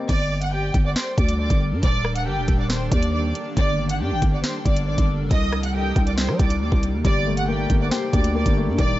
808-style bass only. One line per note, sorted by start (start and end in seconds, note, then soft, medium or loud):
0.09 0.72 G1 loud
0.74 0.95 G1 loud
1.18 1.49 D2 loud
1.50 1.74 G1 loud
1.72 1.82 G2 loud
1.83 2.28 D#1 loud
2.26 2.39 G1 loud
2.37 2.48 D#1 loud
2.48 2.90 D#1 loud
2.92 3.33 D#2 loud
3.57 4.02 G1 loud
4.00 4.13 G2 loud
4.11 4.21 G1 loud
4.22 4.43 G1 loud
4.66 4.97 G1 loud
4.98 5.21 G1 loud
5.20 5.30 F#1 loud
5.31 5.93 C2 loud
5.96 6.30 C2 loud
6.29 6.39 G3 loud
6.39 6.63 C2 loud
6.61 6.71 D#2 loud
6.72 6.95 C2 loud
6.94 7.04 D#2 loud
7.05 7.67 G1 loud
7.70 7.91 G1 loud
8.13 8.45 D2 loud
8.46 8.69 G1 loud
8.68 8.78 G2 loud
8.78 8.99 D#1 loud